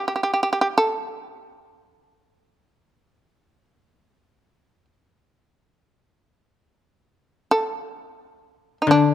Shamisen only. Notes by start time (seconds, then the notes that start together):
0.08 G4
0.16 G4
0.23 G4
0.34 G4
0.43 G4
0.53 G4
0.61 G4
0.78 A4
2.87 G#4
3.38 G4
7.51 A4
8.82 D#4
8.91 D4